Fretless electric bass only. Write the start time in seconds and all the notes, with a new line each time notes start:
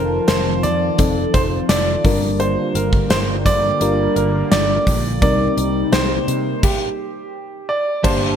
Already playing: F1
0.28 F1
0.63 F2
0.99 F1
1.34 F1
1.69 F1
2.05 G1
2.75 G1
3.10 G1
3.46 G2
3.81 G1
4.16 G1
4.51 G1
4.87 A#1
5.22 C2
5.57 C2
5.92 C2
6.28 C3
8.04 G1